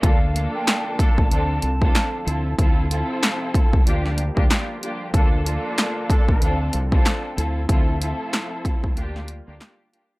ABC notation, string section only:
X:1
M:4/4
L:1/16
Q:"Swing 16ths" 1/4=94
K:Bblyd
V:1 name="String section"
[B,DFA]2 [B,DFA]6 [CDFA]2 z [CDFA]3 [CEFA]2 | [CEFA]2 [CEFA]6 [B,DFG]2 z [B,DFG] [B,DFG]2 [B,DFG]2 | [B,DFA]2 [B,DFA]6 [CDFA]2 z [CDFA]3 [CEFA]2 | [CEFA]2 [CEFA]6 [B,DFG]2 z [B,DFG] [B,DFG]2 [B,DFG]2 |]